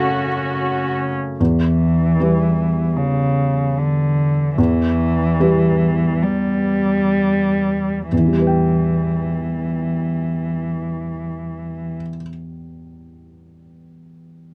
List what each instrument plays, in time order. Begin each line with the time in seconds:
Already playing: felt piano F#2 A3 F#4 A4, cello C#3, viola C#4, violin section F#4
1.40 felt piano E2, cello E3
2.20 felt piano G3 G4 B4
2.97 cello C#3
3.78 cello D3
4.56 felt piano E2, cello E3
5.40 felt piano G3 G4 B4
6.23 cello G3
8.12 felt piano E2, cello E3
8.18 felt piano E3
8.26 felt piano G3
8.33 felt piano G4
8.39 felt piano B4
8.47 felt piano G5